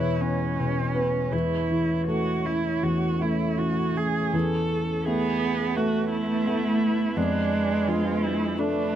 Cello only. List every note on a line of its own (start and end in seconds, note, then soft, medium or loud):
0.00 0.22 E4 soft
0.20 1.34 C#4 soft
1.33 2.01 E4 soft
2.08 2.47 F#4 soft
2.46 2.85 E4 soft
2.83 3.23 F#4 soft
3.22 3.60 E4 soft
3.59 3.99 F#4 soft
3.97 4.34 G#4 soft
5.05 5.78 B3 medium
5.76 7.18 A3 medium
7.16 8.58 G#3 medium
8.57 8.96 A3 medium